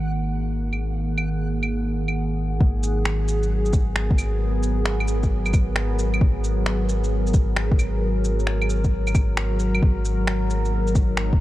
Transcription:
Already playing: G#1 D#3 A#3 F#4 G#4 F#5
0.73 claves
1.18 claves
1.63 claves
2.08 claves
2.60 G#1 F#3, kick
2.83 shaker
2.94 A#4
3.05 finger snap
3.12 B3
3.28 shaker
3.43 shaker
3.66 shaker
3.73 kick, shaker
3.96 finger snap
4.11 kick
4.18 claves, shaker
4.63 shaker
4.86 finger snap
5.00 claves
5.08 shaker
5.23 kick, shaker
5.46 claves, shaker
5.53 kick, claves, shaker
5.76 finger snap
5.99 shaker
6.14 claves
6.21 kick
6.44 shaker
6.66 finger snap
6.89 shaker
7.04 shaker
7.27 shaker
7.34 kick, shaker
7.56 finger snap
7.72 kick
7.79 claves, shaker
8.25 shaker
8.40 shaker
8.47 finger snap
8.62 claves
8.70 shaker
8.84 kick, shaker
9.07 claves, shaker
9.15 kick, claves, shaker
9.37 finger snap
9.60 shaker
9.75 claves
9.82 G#1, kick
10.05 A#3, shaker
10.27 finger snap
10.45 D#4
10.50 shaker
10.65 shaker
10.87 shaker
10.95 kick, shaker
11.17 finger snap
11.33 kick

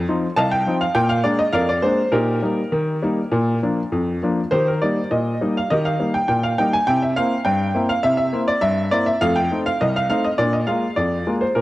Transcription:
0.09 F3 C4 D#4
0.36 C2 D#5 F5 A5
0.51 G5
0.66 F3 C4 D#4
0.81 F5
0.95 A#2 G5
1.09 F5
1.24 G#3 A#3 D4 D5
1.39 D#5
1.53 F2 A#4 D5 F5
1.69 D5
1.82 G#3 A#3 D4 C5
2.12 A#2 D#4 G4 A#4
2.42 G3 A#3 D#4
2.72 D#3
3.03 G3 A#3 D#4
3.32 A#2
3.63 F3 A#3 D4
3.92 F2
4.23 F3 A#3 D4
4.51 D#3 G4 C5
4.68 A#4
4.82 G3 A#3 D#4 D5
5.11 A#2 D#5
5.41 G3 A#3 D#4
5.57 F5
5.70 D#3 G4 D#5
5.85 F5
5.99 G3 A#3 D#4
6.14 G5
6.28 A#2 G5
6.43 F5
6.58 G3 A#3 D#4 G5
6.73 G#5
6.87 C3 E4 G5
7.02 E5
7.16 A#3 C4 E4 F5
7.45 G2 G5
7.75 A#3 C4 E4
7.89 F5
8.03 C3 E4 E5
8.17 E5
8.33 A#3 C4 E4
8.48 D5
8.61 G2 E5
8.92 A#3 C4 E4 D5
9.06 E5
9.21 F2 A3 F5
9.36 G5
9.52 A3 C4 D#4
9.66 F5
9.81 C2 D#5
9.96 F5
10.09 A3 C4 D#4 F5
10.24 D#5
10.38 A#2 D4 D5
10.53 D#5
10.67 G#3 A#3 F4 F5
10.96 F2 D5
11.27 G#3 A#3 F4
11.41 C5
11.55 A#2 A#4

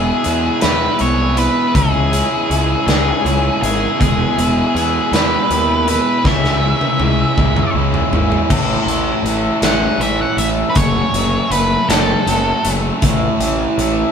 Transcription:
Already playing: E1 E2 B2 E3 G#3 B3 E4 G#4
0.24 E2 B2 E3 G#3 B3 E4, closed hi-hat
0.61 E2 B2 E3 G#3 B3 E4 B4, snare, closed hi-hat
0.99 C2 E2 B2 E3 G#3 B3 E4 C#5, closed hi-hat
1.37 E2 B2 E3 G#3 B3 E4 B4, closed hi-hat
1.74 C#2 C#3 E3 G#3 C#4 E4 G#4, kick, closed hi-hat
2.12 C#3 E3 G#3 C#4 E4, closed hi-hat
2.49 C#2 C#3 E3 G#3 C#4 E4, closed hi-hat
2.87 C#2 C#3 E3 G#3 C#4 E4 G#4, snare, closed hi-hat
3.24 C#2 C#3 E3 G#3 C#4 E4, closed hi-hat
3.62 G#1 C#3 E3 G#3 C#4 E4 G#4, closed hi-hat
3.99 E1 E2 B2 E3 G#3 B3 E4 G#4, kick, closed hi-hat
4.37 E1 E2 B2 E3 G#3 B3 E4, closed hi-hat
4.75 E2 B2 E3 G#3 B3 E4, closed hi-hat
5.12 E2 B2 E3 G#3 B3 E4 B4, snare, closed hi-hat
5.50 D#2 E2 B2 E3 G#3 B3 E4, closed hi-hat
5.88 E2 B2 E3 G#3 B3 E4 B4, closed hi-hat
6.24 C#2 C#3 E3 G#3 C#4 E4 E5, kick, snare
6.44 snare
6.62 C#3 E3 G#3 C#4 E4
6.81 high tom
7.00 C#2 C#3 E3 G#3 C#4 E4, high tom
7.37 C#2 C#3 E3 G#3 C#4 E4, kick, mid tom
7.56 mid tom
7.75 C#2 C#3 E3 G#3 C#4 E4
7.94 floor tom
8.11 G#1 C#3 E3 G#3 C#4 E4, floor tom
8.32 floor tom
8.49 A1 A2 E3 A3 C#4 A4, kick, crash
8.86 A1 E3, closed hi-hat
9.23 A1 A3, closed hi-hat
9.62 A1 C#4 F#5, snare, closed hi-hat
9.98 A1 A2 E3 A3 E5, closed hi-hat
10.03 C#4 A4
10.21 F#5
10.37 A1 A3 E5, closed hi-hat
10.70 B4
10.75 F#1 F#2 C#3 F#3 A3 C#4 A4 C#5, kick, closed hi-hat
11.12 F#1 F#3, closed hi-hat
11.50 F#1 A3 B4, closed hi-hat
11.88 F#1 C#4 A4, snare, closed hi-hat
12.27 F#1 F#2 C#3 F#3 A3 C#4 A4, closed hi-hat
12.65 F#1 A3, closed hi-hat
13.02 A1 A2 E3 A3 C#4 A4, kick, closed hi-hat
13.39 A1 E3, closed hi-hat
13.77 A1 A3, closed hi-hat

